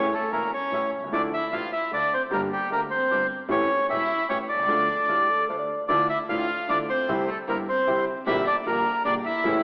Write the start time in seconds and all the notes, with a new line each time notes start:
Already playing: C#4 C#5
0.14 A3 A4
0.32 E1 E2 A3 A#3 C#4 E4 A#4
0.53 C#4 C#5
0.72 A1 A2 A3 C#4 E4
0.92 C2
0.98 B1
1.04 C2
1.08 C#2 D2 D3 F3 A3
1.12 D2 D4 E4 D5
1.34 E4 E5
1.52 A1 A2 F3 D4 E4 F4 F5
1.73 E4 E5
1.91 D2 D3 F3 D4 E4 D5
2.14 C4 C5
2.30 G1 G2 D3 G3 A#3 D4 G4 A#4
2.35 A#3
2.53 G3 G4
2.70 D2 D3 A#3 D4 G4 A#4
2.91 C4 C5
3.10 G1 G2 A#3 D4 G4
3.49 A1 A2 E3 A3 C#4 G4 C#5
3.89 E1 E2 A3 C#4 E4 G4 E5
4.28 A1 A2 A3 C#4 G4 C#5
4.49 D4 D5
4.54 B1
4.59 C2 C#2
4.67 D2 D3 F3 A3 D4 F4 A4
5.08 A1 A2 A3 D4 F4 G4
5.29 A4
5.48 D2 D3 A3 D4 F4 C5
5.59 D5
5.88 D2 D3 E3 F3 A3 D4 E4 F4 D5
6.09 E4 E5
6.29 A1 A2 E3 F3 A3 D4 E4 F4 F5
6.68 D2 D3 E3 F3 A3 D4 E4 F4 D5
6.89 C4 C5
7.08 C2 C3 E3 G3 C4 E4 G4
7.27 A3 A4
7.47 G1 G2 E3 G3 A#3 C4 E4 G4 A#4
7.66 C4 C5
7.86 C2 C3 E3 G3 C4 E4 G4
8.26 A#1 A#2 D3 G3 A#3 D4 E4 G4 E5
8.45 D4 D5
8.65 A#1 A#2 D3 G3 A#3 D4 G4 A#4
9.04 A#1 A#2 D3 G3 A#3 D4 G4 D5
9.25 E4 E5
9.44 A1 A2 C#3 E3 A3 C#4 E4